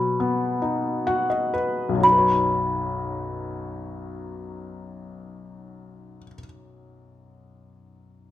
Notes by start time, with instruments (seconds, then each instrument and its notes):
Already playing: felt piano B2 F#3, music box B5
0.20 felt piano B3
0.62 felt piano D#4
1.07 felt piano F#4 F#5
1.30 felt piano D#5
1.54 felt piano B4
1.89 felt piano B1
1.95 felt piano F#2
2.00 felt piano F#3, music box B5
2.07 felt piano D#4
2.12 felt piano B4
2.18 felt piano C#5